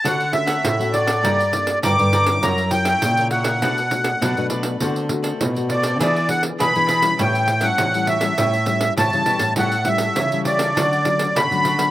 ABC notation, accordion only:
X:1
M:4/4
L:1/16
Q:1/4=101
K:D
V:1 name="Accordion"
f2 e4 d6 d'4 | ^a2 g4 f8 z2 | z6 d2 d2 f2 b4 | g3 f3 e6 a4 |
f2 e4 d6 b4 |]